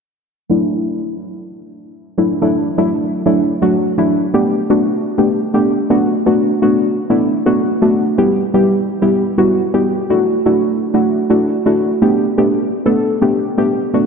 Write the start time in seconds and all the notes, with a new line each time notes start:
0.50 F#3 A3 D4 E4
2.18 F#3 A3 D4 E4
2.42 F#3 A3 D4 E4
2.78 F#3 A3 D4 E4
3.26 F#3 A3 D4 E4
3.62 F#3 A3 D4 F#4
3.98 F#3 A3 D4 E4
4.34 A3 B3 D4 G4
4.70 A3 B3 D4 F#4
5.18 A3 B3 D4 G4
5.54 A3 B3 D4 G4
5.90 A3 B3 D4 F#4
6.26 A3 B3 D4 F#4
6.62 A3 B3 D4 F#4
7.10 A3 B3 D4 E4
7.46 A3 B3 D4 F#4
7.82 A3 B3 D4 F#4
8.18 G3 B3 E4 G4
8.54 G3 B3 E4 G4
9.02 G3 B3 E4 G4
9.38 G3 B3 E4 F#4
9.74 G3 B3 E4 G4
10.10 A3 D4 E4 F#4
10.46 A3 D4 E4 F#4
10.94 A3 D4 E4 F#4
11.30 A3 D4 E4 F#4
11.66 A3 D4 E4 F#4
12.02 A3 B3 D4 G4
12.38 A3 B3 D4 G4
12.86 A3 B3 D4 A4
13.22 A3 B3 D4 G4
13.58 A3 B3 D4 G4
13.94 A3 B3 D4 F#4